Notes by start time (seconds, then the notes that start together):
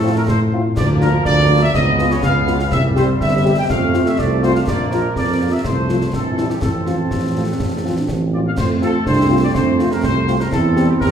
Already playing: A2 F3 A3 A4
0.04 A3 C4 F4
0.16 A#4
0.28 A2 C5, concert bass drum, snare
0.53 A3 C4 F4
0.77 D2 F3 A#3 D5, concert bass drum, snare, crash
1.00 A#3 D4 F4 A#4, snare
1.25 D2 D5, concert bass drum, snare
1.50 A#3 D4 F4
1.62 E5
1.74 C#2 C#3 B3 D#5, concert bass drum, snare
1.99 B3 F4, snare
2.11 C#5, snare
2.23 C#2 F5, concert bass drum, snare
2.47 B3 F4, snare
2.60 F5, snare
2.71 C2 C3 G3 E5, concert bass drum, snare
2.96 G3 C4 G4 C5, snare
3.20 G1 E5, concert bass drum, snare
3.45 G3 C4 G4
3.58 G5
3.69 F2 A3 F5, concert bass drum, snare
3.94 A3 C4 F4, snare
4.06 E5, snare
4.18 C2 D5, concert bass drum, snare
4.43 A3 C4 F4 C5, snare
4.55 F5, snare
4.67 A#1 F3 A#3 D5, concert bass drum, snare, crash
4.91 F3 A#3 F4 A#4, snare
5.16 F2 D5, concert bass drum, snare
5.41 F3 A#3 F4
5.52 E5
5.64 C2 A3 C5, concert bass drum, snare
5.89 F3 A3 F4, snare
6.01 snare
6.13 A#1 E3 C4 A4, concert bass drum, snare
6.38 G3 C4 E4, snare
6.50 G4, snare
6.62 A1 F3 C4 A4, concert bass drum, snare
6.87 F3 C4 F4, snare
7.11 A1 C4, concert bass drum, snare
7.36 F3 A3 C4 F4
7.60 A1 C4, concert bass drum, snare
7.85 F3 C4 F4
7.97 D4
8.08 A1 C4, concert bass drum, snare
8.33 F3 C4 F4 D5
8.46 A#3 F5
8.58 F2 A3 C4 C5, concert bass drum, snare, crash
8.81 A3 C4 F4 A4, snare
9.06 C2 D4 C5, concert bass drum, snare
9.30 A3 C4 F4
9.44 D5
9.54 F2 C4 C5, concert bass drum, snare
9.79 A3 C4 F4, snare
9.91 A#4, snare
10.03 C2 C5, concert bass drum, snare
10.28 A3 C4 F4, snare
10.40 A#4, snare
10.51 E2 G3 C4 E4 A4, concert bass drum, snare
10.76 G3 C4 G4, snare
10.89 G4
11.00 E2 G4 A#4, concert bass drum, snare